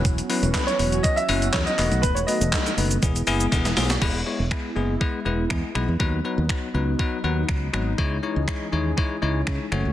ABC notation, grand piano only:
X:1
M:4/4
L:1/16
Q:1/4=121
K:E
V:1 name="Grand piano"
z4 B c3 d e3 c d3 | B c d12 z2 | z16 | z16 |
z16 |]